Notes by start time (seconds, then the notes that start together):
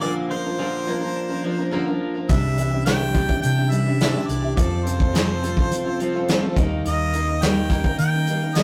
0.01 A#2 D3 F3 A#3 D4 A#4 D5
0.29 F3 A#3 D4 A#4 C5
0.44 F3 A#3 D4 A#4
0.58 A#2 D3 F3 A#3 D4 A#4
0.87 F3 A#3 D4 A#4
1.01 F3 A#3 D4 A#4
1.16 D4
1.29 F3 A#3 D4 A#4
1.43 F3 A#3 D4 A#4
1.57 F3 A#3 D4 A#4
1.71 A#2 D3 F3 A#3 D4 A#4
1.86 F3 A#3 D4 A#4
2.00 F3
2.14 F3 A#3 D4 A#4
2.29 C2 C3 G3 D4 E4 G4 E5, kick, closed hi-hat
2.57 E3 G3 D4 E4 G4, closed hi-hat
2.71 D4 E4 G4
2.85 C3 E3 G3 D4 E4 G4 G5, snare, closed hi-hat
3.13 G3 D4 E4 G4, kick, closed hi-hat
3.27 D4 E4 G4, kick
3.41 C3 D4 G5, closed hi-hat
3.56 D4 E4 G4
3.70 E3 G3 D4 E4 G4 E5, closed hi-hat
3.86 D4 E4 G4
4.00 C3 G3 D4 E4 G4, snare, closed hi-hat
4.14 D4 E4 G4
4.27 C2 E3 D5, closed hi-hat
4.42 D4 E4 G4
4.56 F2 F3 C4 F4 A4 D5, kick, closed hi-hat
4.85 C3 F3 C4 F4 A4 C5, closed hi-hat
4.98 C4 F4 A4, kick
5.13 F3 C4 F4 A4, snare, closed hi-hat
5.41 F3 A3 C4 F4 A4, closed hi-hat
5.56 C4 F4 A4, kick
5.71 F3 C4, closed hi-hat
5.84 C4 F4 A4
5.99 F3 C4 F4 A4, closed hi-hat
6.14 C4 F4 A4
6.28 F3 A3 C4 F4 A4, snare, closed hi-hat
6.42 C4 F4 A4
6.57 D#2 D#3 G3 A#3 D#4 A#4, kick, closed hi-hat
6.85 D#2 D#3 D#5, closed hi-hat
7.13 G3 A#3 D#4 A#4, closed hi-hat
7.28 A#3 D#4 A#4
7.42 D#3 G3 A#3 D#4 A#4 G5, snare, closed hi-hat
7.70 G3 A#3 D#4 A#4, kick, closed hi-hat
7.84 A#3 D#4 A#4, kick
7.98 D#3 D#4 G5, closed hi-hat
8.13 A#3 D#4 A#4
8.27 D#3 G3 A#3 D#4 A#4, closed hi-hat
8.42 A#3 D#4 A#4
8.55 D#3 G3 A#3 D#4 A#4 D#5, snare, closed hi-hat